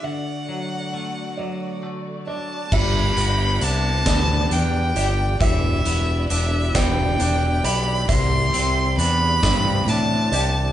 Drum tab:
CC |------|x-----|------|------|
HH |------|-xxxxx|xxxxxx|xxxxxx|
SD |------|---o--|---o--|---o--|
BD |------|o--o--|o--o--|o--o--|